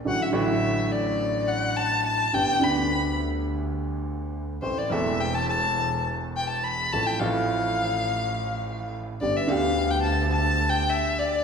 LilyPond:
<<
  \new Staff \with { instrumentName = "Violin" } { \time 4/4 \key g \mixolydian \tempo 4 = 105 fis''16 e''16 e''4 d''4 fis''8 a''8 a''8 | g''8 b''4 r2 r8 | c''16 d''16 e''8 g''16 a''16 a''4 r8 g''16 a''16 b''8 | a''16 g''16 f''2. r8 |
d''16 e''16 f''8. g''16 a''8 \tuplet 3/2 { a''4 g''8 } e''8 d''8 | }
  \new Staff \with { instrumentName = "Upright piano" } { \clef bass \time 4/4 \key g \mixolydian <a,, a, d fis a fis'>8 <a,, a, d fis a fis'>2.~ <a,, a, d fis a fis'>8 | <g,, g, d g b g'>8 <d, d g b g'>2.~ <d, d g b g'>8 | <a,, a, e a c' a'>8 <e,, e, e a c' a'>2.~ <e,, e, e a c' a'>8 | <a,, a, f a c' a'>8 <a,, a, f a c' a'>2.~ <a,, a, f a c' a'>8 |
<g,, g, d g b g'>8 <d, d g b g'>2.~ <d, d g b g'>8 | }
  \new Staff \with { instrumentName = "Double bass" } { \clef bass \time 4/4 \key g \mixolydian a,,8 a,,2.~ a,,8 | g,,8 d,2.~ d,8 | a,,8 e,,2.~ e,,8 | a,,8 a,,2.~ a,,8 |
g,,8 d,2.~ d,8 | }
>>